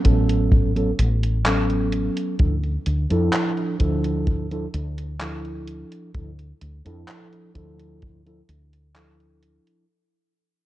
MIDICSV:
0, 0, Header, 1, 4, 480
1, 0, Start_track
1, 0, Tempo, 937500
1, 1225, Time_signature, 4, 2, 24, 8
1, 5457, End_track
2, 0, Start_track
2, 0, Title_t, "Tine electric piano"
2, 0, Program_c, 0, 4
2, 21, Note_on_c, 0, 54, 98
2, 24, Note_on_c, 0, 59, 84
2, 27, Note_on_c, 0, 61, 92
2, 29, Note_on_c, 0, 69, 106
2, 358, Note_off_c, 0, 54, 0
2, 359, Note_off_c, 0, 59, 0
2, 361, Note_off_c, 0, 61, 0
2, 362, Note_off_c, 0, 69, 0
2, 387, Note_on_c, 0, 54, 88
2, 389, Note_on_c, 0, 59, 83
2, 392, Note_on_c, 0, 61, 83
2, 394, Note_on_c, 0, 69, 96
2, 456, Note_off_c, 0, 54, 0
2, 458, Note_off_c, 0, 59, 0
2, 459, Note_off_c, 0, 61, 0
2, 460, Note_off_c, 0, 69, 0
2, 742, Note_on_c, 0, 54, 77
2, 745, Note_on_c, 0, 59, 70
2, 748, Note_on_c, 0, 61, 73
2, 750, Note_on_c, 0, 69, 82
2, 1196, Note_off_c, 0, 54, 0
2, 1198, Note_off_c, 0, 59, 0
2, 1199, Note_off_c, 0, 61, 0
2, 1200, Note_off_c, 0, 69, 0
2, 1223, Note_on_c, 0, 53, 70
2, 1226, Note_on_c, 0, 62, 65
2, 1228, Note_on_c, 0, 64, 68
2, 1231, Note_on_c, 0, 69, 78
2, 1298, Note_off_c, 0, 53, 0
2, 1299, Note_off_c, 0, 62, 0
2, 1300, Note_off_c, 0, 64, 0
2, 1302, Note_off_c, 0, 69, 0
2, 1587, Note_on_c, 0, 53, 92
2, 1590, Note_on_c, 0, 62, 89
2, 1592, Note_on_c, 0, 64, 88
2, 1595, Note_on_c, 0, 69, 105
2, 1916, Note_off_c, 0, 53, 0
2, 1918, Note_off_c, 0, 62, 0
2, 1919, Note_off_c, 0, 64, 0
2, 1920, Note_off_c, 0, 69, 0
2, 1943, Note_on_c, 0, 53, 97
2, 1946, Note_on_c, 0, 62, 85
2, 1948, Note_on_c, 0, 64, 91
2, 1951, Note_on_c, 0, 69, 110
2, 2279, Note_off_c, 0, 53, 0
2, 2280, Note_off_c, 0, 62, 0
2, 2281, Note_off_c, 0, 64, 0
2, 2282, Note_off_c, 0, 69, 0
2, 2309, Note_on_c, 0, 53, 89
2, 2311, Note_on_c, 0, 62, 83
2, 2314, Note_on_c, 0, 64, 83
2, 2316, Note_on_c, 0, 69, 98
2, 2377, Note_off_c, 0, 53, 0
2, 2379, Note_off_c, 0, 62, 0
2, 2380, Note_off_c, 0, 64, 0
2, 2381, Note_off_c, 0, 69, 0
2, 2664, Note_on_c, 0, 53, 76
2, 2667, Note_on_c, 0, 62, 66
2, 2669, Note_on_c, 0, 64, 70
2, 2671, Note_on_c, 0, 69, 82
2, 3117, Note_off_c, 0, 53, 0
2, 3118, Note_off_c, 0, 62, 0
2, 3119, Note_off_c, 0, 64, 0
2, 3121, Note_off_c, 0, 69, 0
2, 3143, Note_on_c, 0, 53, 68
2, 3146, Note_on_c, 0, 62, 64
2, 3148, Note_on_c, 0, 64, 66
2, 3151, Note_on_c, 0, 69, 81
2, 3218, Note_off_c, 0, 53, 0
2, 3219, Note_off_c, 0, 62, 0
2, 3220, Note_off_c, 0, 64, 0
2, 3222, Note_off_c, 0, 69, 0
2, 3507, Note_on_c, 0, 53, 91
2, 3510, Note_on_c, 0, 62, 85
2, 3513, Note_on_c, 0, 64, 86
2, 3515, Note_on_c, 0, 69, 97
2, 3836, Note_off_c, 0, 53, 0
2, 3838, Note_off_c, 0, 62, 0
2, 3839, Note_off_c, 0, 64, 0
2, 3840, Note_off_c, 0, 69, 0
2, 3862, Note_on_c, 0, 53, 96
2, 3865, Note_on_c, 0, 62, 85
2, 3867, Note_on_c, 0, 64, 87
2, 3869, Note_on_c, 0, 69, 102
2, 4198, Note_off_c, 0, 53, 0
2, 4200, Note_off_c, 0, 62, 0
2, 4201, Note_off_c, 0, 64, 0
2, 4202, Note_off_c, 0, 69, 0
2, 4227, Note_on_c, 0, 53, 90
2, 4229, Note_on_c, 0, 62, 81
2, 4232, Note_on_c, 0, 64, 83
2, 4234, Note_on_c, 0, 69, 96
2, 4297, Note_off_c, 0, 53, 0
2, 4298, Note_off_c, 0, 62, 0
2, 4299, Note_off_c, 0, 64, 0
2, 4300, Note_off_c, 0, 69, 0
2, 4582, Note_on_c, 0, 53, 74
2, 4585, Note_on_c, 0, 62, 65
2, 4587, Note_on_c, 0, 64, 67
2, 4590, Note_on_c, 0, 69, 82
2, 5036, Note_off_c, 0, 53, 0
2, 5037, Note_off_c, 0, 62, 0
2, 5038, Note_off_c, 0, 64, 0
2, 5040, Note_off_c, 0, 69, 0
2, 5457, End_track
3, 0, Start_track
3, 0, Title_t, "Fretless electric bass"
3, 0, Program_c, 1, 35
3, 27, Note_on_c, 1, 33, 97
3, 464, Note_off_c, 1, 33, 0
3, 506, Note_on_c, 1, 33, 99
3, 1065, Note_off_c, 1, 33, 0
3, 1227, Note_on_c, 1, 38, 92
3, 1414, Note_off_c, 1, 38, 0
3, 1467, Note_on_c, 1, 38, 83
3, 1562, Note_off_c, 1, 38, 0
3, 1591, Note_on_c, 1, 41, 100
3, 1680, Note_off_c, 1, 41, 0
3, 1948, Note_on_c, 1, 38, 92
3, 2385, Note_off_c, 1, 38, 0
3, 2427, Note_on_c, 1, 38, 100
3, 2986, Note_off_c, 1, 38, 0
3, 3147, Note_on_c, 1, 38, 89
3, 3334, Note_off_c, 1, 38, 0
3, 3387, Note_on_c, 1, 38, 79
3, 3482, Note_off_c, 1, 38, 0
3, 3511, Note_on_c, 1, 41, 100
3, 3600, Note_off_c, 1, 41, 0
3, 3866, Note_on_c, 1, 38, 98
3, 4304, Note_off_c, 1, 38, 0
3, 4346, Note_on_c, 1, 38, 97
3, 4905, Note_off_c, 1, 38, 0
3, 5457, End_track
4, 0, Start_track
4, 0, Title_t, "Drums"
4, 25, Note_on_c, 9, 42, 100
4, 27, Note_on_c, 9, 36, 60
4, 76, Note_off_c, 9, 42, 0
4, 79, Note_off_c, 9, 36, 0
4, 150, Note_on_c, 9, 42, 54
4, 201, Note_off_c, 9, 42, 0
4, 264, Note_on_c, 9, 36, 126
4, 266, Note_on_c, 9, 42, 56
4, 316, Note_off_c, 9, 36, 0
4, 317, Note_off_c, 9, 42, 0
4, 390, Note_on_c, 9, 42, 28
4, 441, Note_off_c, 9, 42, 0
4, 506, Note_on_c, 9, 42, 96
4, 557, Note_off_c, 9, 42, 0
4, 631, Note_on_c, 9, 42, 53
4, 682, Note_off_c, 9, 42, 0
4, 746, Note_on_c, 9, 39, 118
4, 746, Note_on_c, 9, 42, 54
4, 797, Note_off_c, 9, 39, 0
4, 797, Note_off_c, 9, 42, 0
4, 869, Note_on_c, 9, 42, 28
4, 921, Note_off_c, 9, 42, 0
4, 985, Note_on_c, 9, 42, 93
4, 1036, Note_off_c, 9, 42, 0
4, 1110, Note_on_c, 9, 42, 57
4, 1161, Note_off_c, 9, 42, 0
4, 1224, Note_on_c, 9, 42, 52
4, 1227, Note_on_c, 9, 36, 127
4, 1275, Note_off_c, 9, 42, 0
4, 1278, Note_off_c, 9, 36, 0
4, 1349, Note_on_c, 9, 42, 28
4, 1400, Note_off_c, 9, 42, 0
4, 1465, Note_on_c, 9, 42, 91
4, 1516, Note_off_c, 9, 42, 0
4, 1590, Note_on_c, 9, 42, 54
4, 1641, Note_off_c, 9, 42, 0
4, 1706, Note_on_c, 9, 39, 125
4, 1706, Note_on_c, 9, 42, 52
4, 1757, Note_off_c, 9, 39, 0
4, 1757, Note_off_c, 9, 42, 0
4, 1830, Note_on_c, 9, 42, 26
4, 1881, Note_off_c, 9, 42, 0
4, 1946, Note_on_c, 9, 42, 92
4, 1948, Note_on_c, 9, 36, 56
4, 1997, Note_off_c, 9, 42, 0
4, 1999, Note_off_c, 9, 36, 0
4, 2070, Note_on_c, 9, 42, 50
4, 2121, Note_off_c, 9, 42, 0
4, 2186, Note_on_c, 9, 42, 52
4, 2187, Note_on_c, 9, 36, 125
4, 2237, Note_off_c, 9, 42, 0
4, 2238, Note_off_c, 9, 36, 0
4, 2311, Note_on_c, 9, 42, 26
4, 2362, Note_off_c, 9, 42, 0
4, 2426, Note_on_c, 9, 42, 95
4, 2478, Note_off_c, 9, 42, 0
4, 2550, Note_on_c, 9, 42, 51
4, 2601, Note_off_c, 9, 42, 0
4, 2665, Note_on_c, 9, 39, 116
4, 2665, Note_on_c, 9, 42, 50
4, 2716, Note_off_c, 9, 39, 0
4, 2716, Note_off_c, 9, 42, 0
4, 2790, Note_on_c, 9, 42, 25
4, 2841, Note_off_c, 9, 42, 0
4, 2905, Note_on_c, 9, 42, 87
4, 2957, Note_off_c, 9, 42, 0
4, 3030, Note_on_c, 9, 42, 52
4, 3081, Note_off_c, 9, 42, 0
4, 3145, Note_on_c, 9, 42, 48
4, 3146, Note_on_c, 9, 36, 112
4, 3197, Note_off_c, 9, 42, 0
4, 3198, Note_off_c, 9, 36, 0
4, 3270, Note_on_c, 9, 42, 26
4, 3322, Note_off_c, 9, 42, 0
4, 3386, Note_on_c, 9, 42, 86
4, 3437, Note_off_c, 9, 42, 0
4, 3511, Note_on_c, 9, 42, 51
4, 3562, Note_off_c, 9, 42, 0
4, 3626, Note_on_c, 9, 39, 118
4, 3626, Note_on_c, 9, 42, 50
4, 3677, Note_off_c, 9, 39, 0
4, 3677, Note_off_c, 9, 42, 0
4, 3751, Note_on_c, 9, 42, 26
4, 3802, Note_off_c, 9, 42, 0
4, 3866, Note_on_c, 9, 42, 92
4, 3867, Note_on_c, 9, 36, 58
4, 3917, Note_off_c, 9, 42, 0
4, 3918, Note_off_c, 9, 36, 0
4, 3990, Note_on_c, 9, 42, 50
4, 4042, Note_off_c, 9, 42, 0
4, 4106, Note_on_c, 9, 42, 49
4, 4109, Note_on_c, 9, 36, 115
4, 4158, Note_off_c, 9, 42, 0
4, 4160, Note_off_c, 9, 36, 0
4, 4232, Note_on_c, 9, 42, 25
4, 4283, Note_off_c, 9, 42, 0
4, 4347, Note_on_c, 9, 42, 83
4, 4398, Note_off_c, 9, 42, 0
4, 4471, Note_on_c, 9, 42, 50
4, 4522, Note_off_c, 9, 42, 0
4, 4586, Note_on_c, 9, 39, 114
4, 4586, Note_on_c, 9, 42, 47
4, 4637, Note_off_c, 9, 39, 0
4, 4637, Note_off_c, 9, 42, 0
4, 4712, Note_on_c, 9, 42, 25
4, 4763, Note_off_c, 9, 42, 0
4, 4827, Note_on_c, 9, 42, 82
4, 4878, Note_off_c, 9, 42, 0
4, 4952, Note_on_c, 9, 42, 51
4, 5003, Note_off_c, 9, 42, 0
4, 5457, End_track
0, 0, End_of_file